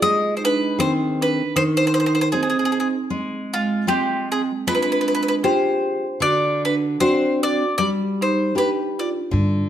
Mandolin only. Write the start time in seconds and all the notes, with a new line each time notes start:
0.02 D#5
0.37 C5
0.45 B4
0.80 C5
1.22 B4
1.56 C5
1.77 C5
1.87 C5
1.94 C5
2.00 C5
2.06 C5
2.15 C5
2.21 C5
2.32 G#4
2.43 G#4
2.50 G#4
2.59 G#4
2.65 G#4
2.72 G#4
2.80 G#4
3.54 F4
3.88 G4
4.32 G#4
4.68 B4
4.75 B4
4.82 B4
4.92 B4
5.01 B4
5.08 B4
5.15 B4
5.23 B4
5.28 B4
5.44 C5
6.22 D5
6.65 B4
7.00 C5
7.43 D5
7.78 D5
8.22 C5
8.58 B4
8.99 D5